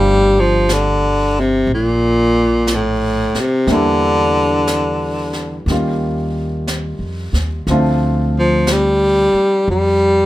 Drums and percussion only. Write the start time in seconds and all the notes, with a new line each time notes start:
0.69 brush sweep, snare, hi-hat pedal
1.68 brush sweep
2.67 brush sweep, snare, hi-hat pedal
3.34 snare
3.67 brush sweep, snare
4.67 brush sweep, snare, hi-hat pedal
5.33 snare
5.68 brush sweep, snare
6.67 brush sweep, snare, hi-hat pedal
7.34 snare
7.67 brush sweep, snare
8.67 brush sweep, snare, hi-hat pedal
9.66 brush sweep